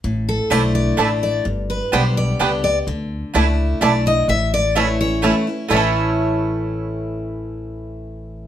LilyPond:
<<
  \new Staff \with { instrumentName = "Steel-string acoustic guitar" } { \time 3/4 \key a \mixolydian \tempo 4 = 127 r8 a'8 c''8 d''4 d''8 | r8 b'8 c''8 d''4 d''8 | r2 d''8 dis''8 | e''8 d''8 cis''8 cis''4 r8 |
cis''2.~ | cis''2. | }
  \new Staff \with { instrumentName = "Mandolin" } { \time 3/4 \key a \mixolydian r4 <a e' d'' a''>8 r8 <a e' d'' a''>8 r8 | r4 <b g' d'' g''>8 r8 <b g' d'' g''>8 r8 | r4 <a e' d'' a''>8 r8 <a e' d'' a''>8 r8 | r4 <a e' cis'' a''>8 r8 <a e' cis'' a''>8 r8 |
<a e' cis'' a''>2.~ | <a e' cis'' a''>2. | }
  \new Staff \with { instrumentName = "Five-string banjo" } { \time 3/4 \key a \mixolydian r4 <a d' e'>8 r8 <a d' e'>8 r8 | r4 <b d' g'>8 r8 <b d' g'>8 r8 | r4 <a d' e'>8 r8 <a d' e'>8 r8 | r4 <a cis' e'>8 r8 <a cis' e'>8 r8 |
<a cis' e' a'>2.~ | <a cis' e' a'>2. | }
  \new Staff \with { instrumentName = "Steel-string acoustic guitar" } { \time 3/4 \key a \mixolydian << { r4 <d a d' e'>4 <a d' e'>4 | r4 <d g b g'>4 <d g b g'>8 <b g'>8 | r4 <a d' e'>4 <d a d' e'>8 <d' e'>8 | r4 <e a cis' e'>8 <cis' e'>8 <e a cis' e'>8 <cis' e'>8 |
<a, e a cis' e'>2.~ | <a, e a cis' e'>2. | } \\ { a,2 r4 | g,2 r4 | d2 r4 | a,2 r4 |
r2. | r2. | } >> }
  \new Staff \with { instrumentName = "Upright bass" } { \clef bass \time 3/4 \key a \mixolydian a,,4 b,,4 a,,4 | g,,4 b,,4 cis,4 | d,4 cis,4 b,,4 | a,,2. |
a,,2.~ | a,,2. | }
>>